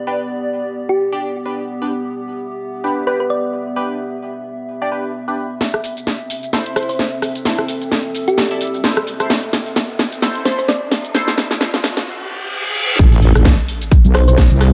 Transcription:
Already playing: B3 G4 D5
0.07 D4 G4 B4
0.89 G4
1.12 D4 G4 D5
1.45 D4 G4 B4
1.82 D4 G4 B4
1.95 E5
2.84 D4 G4 B4
3.07 D4 G4 B4
3.20 B4
3.30 D5
3.76 D4 G4 B4
4.82 D4 G4 D5
4.92 D4 G4 B4
5.28 D4 G4 B4
5.61 C4, snare, closed hi-hat, riser, shaker
5.74 cross-stick, closed hi-hat
5.84 open hi-hat, shaker
5.97 closed hi-hat, shaker
6.05 A4, snare, closed hi-hat, shaker
6.30 open hi-hat, shaker
6.43 closed hi-hat, shaker
6.53 E4 A4 C5, snare, closed hi-hat, shaker
6.66 closed hi-hat
6.76 E4 A4 C5, cross-stick, open hi-hat, shaker
6.83 closed hi-hat
6.89 C5, open hi-hat, shaker
6.99 snare, closed hi-hat, shaker
7.22 cross-stick, open hi-hat, shaker
7.35 closed hi-hat, shaker
7.45 E4 A4 C5, snare, closed hi-hat, shaker
7.58 cross-stick, closed hi-hat
7.68 open hi-hat, shaker
7.82 closed hi-hat, shaker
7.92 snare, closed hi-hat, shaker
8.15 open hi-hat, shaker
8.28 G4, closed hi-hat, shaker
8.38 snare, closed hi-hat, shaker
8.51 E4 A4 D5, closed hi-hat
8.61 open hi-hat, shaker
8.67 closed hi-hat
8.74 shaker
8.84 E4 A4 C5, snare, closed hi-hat, shaker
8.97 cross-stick
9.07 open hi-hat, shaker
9.20 E4 A4 C5, cross-stick, closed hi-hat, shaker
9.30 snare, closed hi-hat, shaker
9.43 closed hi-hat
9.53 snare, open hi-hat, shaker
9.66 closed hi-hat, shaker
9.76 snare, closed hi-hat, shaker
9.99 snare, open hi-hat, shaker
10.12 closed hi-hat, shaker
10.22 E4 A4 C5, snare, closed hi-hat, shaker
10.35 closed hi-hat
10.45 E4 A4 C5, snare, open hi-hat, shaker
10.52 closed hi-hat
10.58 C5, open hi-hat, shaker
10.68 D5, snare, closed hi-hat, shaker
10.91 snare, open hi-hat, shaker
11.05 closed hi-hat, shaker
11.15 E4 A4 C5, snare, closed hi-hat, shaker
11.28 snare, closed hi-hat
11.38 snare, open hi-hat, shaker
11.51 snare, closed hi-hat, shaker
11.61 snare, closed hi-hat, shaker
11.74 snare
11.84 snare, open hi-hat, shaker
11.97 snare, closed hi-hat, shaker
12.07 reverse cymbal
12.99 A1, kick, closed hi-hat, crash, sub drop, shaker
13.12 closed hi-hat, shaker
13.22 open hi-hat
13.35 A1, cross-stick, closed hi-hat, shaker
13.45 kick, snare, closed hi-hat, shaker
13.58 closed hi-hat, shaker
13.68 open hi-hat
13.82 closed hi-hat, shaker
13.91 kick, closed hi-hat, shaker
14.05 B1, closed hi-hat, shaker
14.15 C5, cross-stick, open hi-hat
14.28 C5, closed hi-hat, shaker
14.37 kick, snare, closed hi-hat, shaker
14.51 C2, closed hi-hat, shaker
14.61 cross-stick, open hi-hat

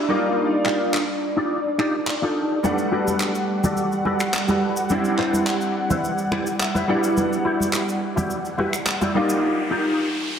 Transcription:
Already playing: D4 D5
0.08 G3 A#3 D#4 F4 G4 D5
0.65 D#4 F4 G4 F5, finger snap, clap
0.94 clap
1.36 D#4 F4 G4 D5
1.78 D#4 F4 G4 D5, finger snap
2.07 muted clean electric guitar stroke, clap
2.22 D#4 F4 G4 A4
2.63 G3 A3 B3 D4 F#5, high conga, cabasa
2.78 cabasa
2.92 F#4 G4 A4 B4
3.07 high conga, cabasa
3.20 clap, cabasa
3.35 cabasa
3.63 F#4 G4 A4 D5, high conga, low conga, cabasa
3.77 cabasa
3.92 cabasa
4.05 F#4 G4 A4 B4, high conga
4.20 finger snap, cabasa
4.33 finger snap, muted clean electric guitar stroke, clap, cabasa
4.48 F#4 G4 A4 B4, high conga, cabasa
4.77 cabasa
4.89 G3 C4 D4 E4, high conga, cabasa
5.05 cabasa
5.18 E4 B4 C5 D5, clap
5.33 high conga, cabasa
5.47 clap, cabasa
5.61 cabasa
5.90 E4 B4 C5 E5, high conga, low conga, cabasa
6.04 cabasa
6.18 cabasa
6.31 E4 B4 C5 D5 G5, finger snap, high conga
6.46 cabasa
6.59 E5, muted clean electric guitar stroke, clap, cabasa
6.74 E4 B4 C5 E5, high conga, cabasa
6.87 G3 B3 D4 E4 F#4 G4 D5 F#5
7.04 cabasa
7.17 riser, high conga, cabasa
7.33 cabasa
7.45 E4 F#4 G4 D5
7.60 high conga, cabasa
7.73 clap, cabasa
7.89 cabasa
8.16 E4 F#4 G4 D5, high conga, low conga, cabasa
8.30 cabasa
8.45 cabasa
8.58 E4 F#4 G4 B4, high conga
8.73 finger snap, cabasa
8.86 finger snap, muted clean electric guitar stroke, clap, cabasa
9.01 E4 F#4 G4 D5, high conga, cabasa
9.14 G3 A#3 D4 D#4 F4 G4 D5
9.30 cabasa
9.70 D#4 F4 G4 A#4

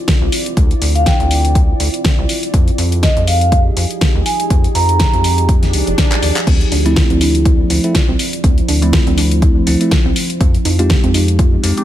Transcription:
Already playing: C4 E4 F4 D5
0.08 kick, snare, closed hi-hat
0.22 C2
0.32 open hi-hat
0.46 closed hi-hat
0.57 D2, kick, closed hi-hat
0.71 closed hi-hat
0.82 D2, open hi-hat
0.95 F5, closed hi-hat
1.06 G5, kick, snare, closed hi-hat
1.20 D2, closed hi-hat
1.31 open hi-hat
1.45 closed hi-hat
1.55 kick, closed hi-hat
1.80 D2, open hi-hat
1.94 closed hi-hat
2.04 kick, snare, closed hi-hat
2.18 C2
2.29 F3 D#4 G4 G#4, open hi-hat
2.43 closed hi-hat
2.54 F2, kick, closed hi-hat
2.68 closed hi-hat
2.78 F2, open hi-hat
2.92 closed hi-hat
3.03 D#5, kick, snare, closed hi-hat
3.17 F2, closed hi-hat
3.27 F5, open hi-hat
3.41 F5, closed hi-hat
3.52 kick, closed hi-hat
3.77 F2, open hi-hat
3.91 closed hi-hat
4.01 kick, snare, closed hi-hat
4.15 D#2
4.26 G#5, open hi-hat
4.40 closed hi-hat
4.50 F2, kick, closed hi-hat
4.64 closed hi-hat
4.75 F2 A#5, open hi-hat
4.89 closed hi-hat
5.00 kick, snare, closed hi-hat
5.13 F2, closed hi-hat
5.24 open hi-hat
5.38 closed hi-hat
5.49 kick, closed hi-hat, swell
5.63 snare, closed hi-hat
5.73 C2, open hi-hat
5.87 F1, closed hi-hat
5.98 kick, snare, closed hi-hat
6.12 clap, closed hi-hat
6.23 D#2, open hi-hat
6.36 clap, closed hi-hat
6.47 D2 C4 E4 D5, kick, closed hi-hat, crash
6.61 closed hi-hat
6.72 D2 D4, open hi-hat
6.85 F3 A3 C4 E4, closed hi-hat
6.96 F4, kick, snare, closed hi-hat
7.10 D2 C4, closed hi-hat
7.21 D4, open hi-hat
7.35 closed hi-hat
7.45 E4, kick, closed hi-hat
7.70 D2 F3 A3 C4 E4, open hi-hat
7.84 F3 A3 C4 E4, closed hi-hat
7.95 F4, kick, snare, closed hi-hat
8.09 C2 C4
8.19 open hi-hat
8.33 closed hi-hat
8.44 D2 C4 C5, kick, closed hi-hat
8.58 closed hi-hat
8.68 D2 D4, open hi-hat
8.82 F3 A3 C4 E4, closed hi-hat
8.93 F4, kick, snare, closed hi-hat
9.07 D2 C4, closed hi-hat
9.18 D4, open hi-hat
9.31 closed hi-hat
9.42 E4, kick, closed hi-hat
9.67 D2 F3 A3 C4 E4, open hi-hat
9.81 F3 A3 C4 E4, closed hi-hat
9.91 F4, kick, snare, closed hi-hat
10.05 C2 C4
10.16 D#4, open hi-hat
10.30 closed hi-hat
10.41 F2 C4, kick, closed hi-hat
10.54 closed hi-hat
10.65 F2 D#4, open hi-hat
10.79 G#3 C4 D#4 F4 G4, closed hi-hat
10.90 G4, kick, snare, closed hi-hat
11.04 F2 C4, closed hi-hat
11.14 D#4, open hi-hat
11.28 closed hi-hat
11.39 F4, kick, closed hi-hat
11.63 F2 G#3 C4 D#4 G4, open hi-hat
11.77 G#3 C4 D#4 G4, closed hi-hat

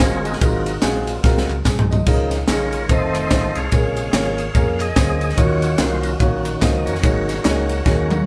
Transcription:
Already playing: G#3 A#3 C4 F4 G#4 A#4
0.00 G1 G#3 C4 F4 F#4 C5 C#5, kick, snare, clap, ride, tambourine
0.25 D#4 F#4 A#4, ride, tambourine
0.33 snare
0.41 G#1 G#2 F#3 G#3 A#3 C4 F4 F#4 A#4, kick, ride, tambourine
0.66 ride, tambourine
0.82 A#1 G#3 C4 F4 F#4 G#4, snare, clap, ride, tambourine
1.07 F#3 A#3 C4 F4, ride, tambourine
1.23 C2 G#3 C4 F4 F#4 A#4, kick, snare, tambourine
1.38 snare
1.49 C#2, clap, tambourine
1.65 C2 G#4, kick, snare, clap, tambourine
1.79 floor tom
1.91 D#5, floor tom, tambourine
2.06 C#2 C#3 F3 G#3 A#3 C#4 D#4 F4 A#4, kick, tambourine, splash
2.31 snare, ride, tambourine
2.48 A#1 G#3 C#4 D#4 F4 G#4 A#4 C#5, snare, clap, ride, tambourine
2.72 ride, tambourine
2.88 F1 D#3 A3 C4 D#4 F4 A4 C5 D#5, kick, ride, tambourine
3.15 clap, ride, tambourine
3.30 A1 A3 C4 D#4 F4 C5, kick, snare, clap, ride, tambourine
3.55 C2 G#4 C#5 F5, ride, tambourine
3.72 A#1 A#2 C3 C#3 G#3 A#3 C#4 F4 G#4 C#5, kick, ride, tambourine
3.97 ride, tambourine
4.13 G#1 A#3 C#4 F4 G#4 C#5, snare, clap, ride, tambourine
4.38 ride, tambourine
4.55 F2 A#3 C#4 F4 G#4 A#4, kick, ride, tambourine
4.70 F5
4.79 G#4 D#5, clap, ride, tambourine
4.96 D2 A#3 C#4 F4 G#4 C5, kick, snare, clap, ride, tambourine
5.21 ride, tambourine
5.29 snare
5.36 D#2 D#3 F#3 A#3 C#4 D#4 F4 F#4 C#5, kick, ride, tambourine
5.62 ride, tambourine
5.78 C2 A#3 D#4 F4 F#4 A#4 C5, snare, clap, ride, tambourine
6.03 A#4, ride, tambourine
6.19 A#1 A#3 C#4 D#4 F4 F#4 C#5, kick, ride, tambourine
6.45 clap, ride, tambourine
6.61 C#2 A#3 D#4 F4 F#4 C5 D#5, kick, snare, clap, ride, tambourine
6.78 D#5
6.85 F2 F#4 A#4 C#5, ride, tambourine
6.95 snare
7.03 G#1 G#2 A#3 D#4 F#4 G#4 C#5, kick, ride, tambourine
7.28 F#3 A#3 C#4, snare, ride, tambourine
7.44 C#2 A#3 D#4 F#4 G#4 C#5, snare, clap, ride, tambourine
7.69 ride, tambourine
7.85 D#2 A#3 D#4 F#4 G#4 C#5, kick, snare, tambourine
8.11 clap, high tom, tambourine

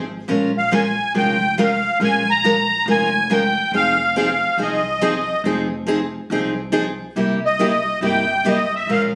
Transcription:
Already playing: G#1
0.28 A#1 F3 G#3 C#4 F4 A#4
0.58 F5
0.71 F3 G#3 C#4 F4 A#4 G#5
1.14 F1 F3 G#3 C#4 F4 A#4 G5
1.58 F3 G#3 C#4 F4 A#4 F5
2.00 A#1 F3 G#3 C#4 F4 A#4
2.04 G#5
2.30 A#5
2.44 F3 G#3 C#4 F4 A#4
2.86 F1 F3 G#3 C#4 F4 A#4
2.91 G#5
3.30 F3 G#3 C#4 F4 A#4 G5
3.72 F1 F3 C4 D#4 G#4
3.76 F5
4.16 F3 C4 D#4 G#4 F5
4.57 C2 F3 C4 D#4 G#4 D#5
5.01 F3 C4 D#4 G#4
5.44 F1 F3 C4 D#4 G#4
5.87 F3 C4 D#4 G#4
6.30 C2 F3 C4 D#4 G#4
6.72 F3 C4 D#4 G#4
7.16 C2 C3 G3 A#3 E4 G4
7.45 D#5
7.59 C3 G3 A#3 E4 G4
8.01 G1 C3 G3 A#3 E4 G4
8.05 G5
8.45 C3 G3 A#3 E4 G4 D#5
8.75 E5
8.87 A#1 F3 G#3 C#4 F4 A#4
8.91 F5

